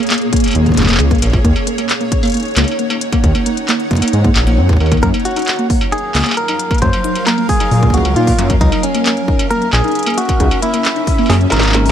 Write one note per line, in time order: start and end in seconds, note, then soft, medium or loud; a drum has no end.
0.00 1.41 A#3 medium
0.00 1.41 G#4 medium
0.00 4.99 C#5 medium
0.00 closed hi-hat soft
0.07 0.15 A#3 medium
0.07 clap loud
0.07 closed hi-hat soft
0.10 closed hi-hat medium
0.14 closed hi-hat soft
0.18 closed hi-hat soft
0.21 closed hi-hat soft
0.33 0.37 A#3 loud
0.33 kick loud
0.33 closed hi-hat medium
0.36 closed hi-hat medium
0.40 closed hi-hat medium
0.44 closed hi-hat medium
0.44 struck metal soft
0.46 closed hi-hat soft
0.46 struck metal soft
0.48 struck metal soft
0.51 closed hi-hat soft
0.51 struck metal soft
0.53 0.72 D#2 medium
0.53 0.65 A#3 medium
0.53 closed hi-hat medium
0.53 struck metal soft
0.66 0.71 A#3 medium
0.66 kick medium
0.66 closed hi-hat soft
0.69 kick medium
0.72 kick medium
0.72 closed hi-hat soft
0.75 0.99 F1 medium
0.75 kick medium
0.75 clap medium
0.75 closed hi-hat loud
0.77 kick medium
0.80 kick loud
0.80 clap medium
0.80 closed hi-hat soft
0.83 kick loud
0.83 clap medium
0.86 0.93 A#3 loud
0.86 kick loud
0.86 clap medium
0.89 clap medium
0.89 closed hi-hat medium
0.89 struck metal soft
0.91 clap medium
0.94 clap loud
0.97 1.16 C#2 loud
0.97 clap loud
0.97 closed hi-hat medium
1.11 1.21 A#3 medium
1.11 kick loud
1.11 closed hi-hat soft
1.15 closed hi-hat soft
1.18 1.39 A#1 medium
1.18 1.27 A#3 medium
1.18 closed hi-hat soft
1.22 closed hi-hat loud
1.22 struck metal soft
1.33 kick loud
1.33 struck metal soft
1.45 1.53 D#2 loud
1.45 1.49 A#3 loud
1.45 4.99 D#4 medium
1.45 4.99 F#5 medium
1.45 kick loud
1.45 closed hi-hat medium
1.56 struck metal medium
1.67 1.77 A#3 medium
1.67 closed hi-hat loud
1.78 1.83 A#3 medium
1.78 closed hi-hat medium
1.78 struck metal soft
1.89 clap loud
1.89 closed hi-hat medium
2.01 2.05 A#3 loud
2.01 closed hi-hat soft
2.12 kick loud
2.12 closed hi-hat medium
2.23 2.33 A#3 medium
2.23 closed hi-hat soft
2.23 struck metal medium
2.25 closed hi-hat soft
2.27 closed hi-hat soft
2.30 closed hi-hat soft
2.32 closed hi-hat soft
2.34 2.39 A#3 medium
2.34 closed hi-hat medium
2.37 closed hi-hat soft
2.40 closed hi-hat soft
2.43 closed hi-hat soft
2.45 closed hi-hat soft
2.48 closed hi-hat soft
2.51 closed hi-hat soft
2.54 clap loud
2.54 closed hi-hat soft
2.57 2.65 C#2 medium
2.57 2.61 A#3 loud
2.57 closed hi-hat medium
2.57 struck metal medium
2.64 closed hi-hat medium
2.64 struck metal soft
2.71 struck metal soft
2.79 2.89 A#3 medium
2.79 closed hi-hat medium
2.90 2.95 A#3 medium
2.90 struck metal medium
3.01 closed hi-hat loud
3.12 3.17 A#3 loud
3.12 kick loud
3.12 closed hi-hat medium
3.12 struck metal soft
3.24 3.32 D#2 loud
3.24 kick loud
3.24 closed hi-hat medium
3.35 3.45 A#3 medium
3.35 closed hi-hat soft
3.35 struck metal soft
3.46 3.51 A#3 medium
3.46 closed hi-hat medium
3.57 closed hi-hat medium
3.68 3.73 A#3 loud
3.68 clap loud
3.68 closed hi-hat medium
3.80 closed hi-hat soft
3.91 4.01 A#3 medium
3.91 kick loud
3.91 closed hi-hat soft
3.93 kick loud
3.95 kick medium
3.95 closed hi-hat soft
3.98 kick medium
4.00 4.07 A#3 medium
4.00 kick medium
4.00 closed hi-hat medium
4.00 struck metal soft
4.08 closed hi-hat medium
4.13 4.30 G#2 medium
4.13 closed hi-hat medium
4.24 4.29 A#3 loud
4.24 kick loud
4.24 closed hi-hat soft
4.36 4.60 A#1 medium
4.36 clap loud
4.36 closed hi-hat medium
4.47 4.57 A#3 loud
4.47 closed hi-hat medium
4.47 struck metal soft
4.58 4.71 F#2 loud
4.58 4.69 C4 loud
4.69 4.78 D#2 medium
4.69 kick loud
4.69 closed hi-hat soft
4.73 kick loud
4.77 4.97 D#2 medium
4.77 4.88 A#4 medium
4.77 kick medium
4.77 struck metal soft
4.86 struck metal soft
4.92 5.02 A#3 loud
4.92 kick loud
4.92 closed hi-hat medium
4.92 struck metal soft
4.97 struck metal soft
5.03 5.11 F#2 loud
5.03 8.57 F#3 medium
5.03 5.13 A#3 medium
5.03 5.09 A#4 loud
5.03 10.36 A#4 medium
5.03 8.57 F5 medium
5.03 kick loud
5.03 closed hi-hat medium
5.14 5.19 A#3 medium
5.14 closed hi-hat soft
5.14 struck metal soft
5.20 closed hi-hat soft
5.25 5.67 F#4 medium
5.25 closed hi-hat medium
5.31 closed hi-hat soft
5.36 5.44 D#4 medium
5.36 closed hi-hat soft
5.36 struck metal soft
5.39 closed hi-hat soft
5.42 closed hi-hat soft
5.45 clap loud
5.45 closed hi-hat soft
5.48 closed hi-hat medium
5.50 closed hi-hat soft
5.53 closed hi-hat soft
5.56 closed hi-hat soft
5.59 5.69 A#3 medium
5.59 closed hi-hat soft
5.70 5.75 A#3 medium
5.70 kick loud
5.70 open hi-hat medium
5.81 struck metal medium
5.92 6.00 D#4 medium
5.92 6.34 G#4 loud
5.92 closed hi-hat medium
5.98 closed hi-hat soft
6.15 6.23 C#2 medium
6.15 6.25 A#3 medium
6.15 clap loud
6.15 open hi-hat medium
6.15 struck metal soft
6.18 struck metal soft
6.20 clap medium
6.20 struck metal soft
6.23 closed hi-hat medium
6.23 struck metal soft
6.26 6.31 A#3 medium
6.26 struck metal soft
6.29 clap medium
6.29 struck metal soft
6.32 struck metal soft
6.34 6.79 A#4 loud
6.34 closed hi-hat soft
6.34 struck metal medium
6.48 6.56 D#4 medium
6.48 closed hi-hat soft
6.48 struck metal medium
6.59 closed hi-hat loud
6.71 6.81 A#3 medium
6.71 kick loud
6.71 closed hi-hat soft
6.71 struck metal soft
6.74 closed hi-hat soft
6.78 closed hi-hat soft
6.82 6.90 F#2 loud
6.82 6.87 A#3 medium
6.82 7.26 C5 loud
6.82 kick loud
6.82 closed hi-hat soft
6.93 closed hi-hat soft
6.93 struck metal medium
7.04 7.12 D#4 medium
7.04 closed hi-hat medium
7.15 closed hi-hat medium
7.15 struck metal soft
7.27 7.37 A#3 medium
7.27 7.49 A#4 loud
7.27 clap loud
7.27 closed hi-hat medium
7.38 7.42 A#3 medium
7.38 closed hi-hat soft
7.49 7.95 G#4 loud
7.49 kick loud
7.49 open hi-hat medium
7.60 7.68 D#4 medium
7.60 closed hi-hat soft
7.60 struck metal medium
7.71 7.88 A#2 medium
7.71 open hi-hat medium
7.83 7.93 A#3 medium
7.83 kick loud
7.83 closed hi-hat soft
7.90 8.16 C#2 medium
7.90 7.98 A#3 medium
7.90 8.15 F#4 loud
7.90 kick medium
7.90 closed hi-hat medium
7.98 kick medium
8.05 closed hi-hat medium
8.05 struck metal soft
8.16 8.33 A#2 loud
8.16 8.24 D#4 medium
8.16 8.47 F4 loud
8.16 closed hi-hat soft
8.27 kick loud
8.27 open hi-hat medium
8.39 8.55 F#2 medium
8.39 8.49 A#3 medium
8.39 closed hi-hat medium
8.39 struck metal soft
8.50 8.54 A#3 medium
8.50 kick loud
8.50 closed hi-hat soft
8.50 struck metal soft
8.61 8.69 C#2 loud
8.61 11.92 C#4 medium
8.61 8.84 D#4 loud
8.61 11.92 E5 medium
8.61 kick loud
8.61 closed hi-hat medium
8.72 8.80 D#4 medium
8.72 closed hi-hat soft
8.72 struck metal medium
8.83 9.47 C#4 medium
8.83 closed hi-hat medium
8.95 9.05 A#3 medium
8.95 closed hi-hat medium
8.95 struck metal soft
9.06 9.10 A#3 medium
9.06 clap loud
9.06 closed hi-hat medium
9.17 closed hi-hat soft
9.28 9.36 D#4 medium
9.28 kick loud
9.39 closed hi-hat medium
9.39 struck metal medium
9.51 9.61 A#3 medium
9.51 9.71 A#4 loud
9.51 closed hi-hat medium
9.62 9.66 A#3 medium
9.62 closed hi-hat soft
9.73 9.81 A#1 medium
9.73 10.19 G#4 loud
9.73 clap loud
9.73 struck metal medium
9.84 9.92 D#4 medium
9.84 closed hi-hat soft
9.88 closed hi-hat soft
9.92 closed hi-hat soft
9.95 closed hi-hat medium
9.99 closed hi-hat soft
10.03 closed hi-hat soft
10.06 10.17 A#3 medium
10.06 closed hi-hat soft
10.06 struck metal medium
10.14 10.59 F#4 loud
10.14 closed hi-hat soft
10.18 10.22 A#3 medium
10.18 closed hi-hat medium
10.21 closed hi-hat soft
10.25 kick loud
10.25 closed hi-hat soft
10.29 closed hi-hat soft
10.29 struck metal soft
10.40 10.48 C#2 loud
10.40 10.48 D#4 medium
10.40 11.92 C5 medium
10.40 kick loud
10.40 closed hi-hat medium
10.51 closed hi-hat soft
10.51 struck metal medium
10.62 10.72 A#3 medium
10.62 11.32 E4 medium
10.62 closed hi-hat medium
10.74 10.78 A#3 medium
10.74 closed hi-hat medium
10.74 struck metal soft
10.85 clap loud
10.85 closed hi-hat medium
10.96 11.04 D#4 medium
10.96 closed hi-hat soft
11.07 kick loud
11.07 open hi-hat medium
11.18 11.28 A#3 medium
11.18 struck metal soft
11.26 11.46 F#2 medium
11.26 11.34 A#3 medium
11.26 11.36 G#4 medium
11.26 snare medium
11.26 open hi-hat medium
11.26 struck metal soft
11.33 struck metal soft
11.41 closed hi-hat soft
11.50 11.92 G#1 medium
11.50 11.60 A#2 medium
11.50 11.92 A#4 medium
11.50 snare medium
11.50 clap soft
11.50 closed hi-hat medium
11.55 clap medium
11.58 snare medium
11.58 clap medium
11.60 clap medium
11.63 clap medium
11.63 closed hi-hat medium
11.66 clap medium
11.69 clap medium
11.72 11.79 A#3 loud
11.72 snare medium
11.72 clap loud
11.72 closed hi-hat medium
11.86 11.92 A#4 medium
11.86 open hi-hat medium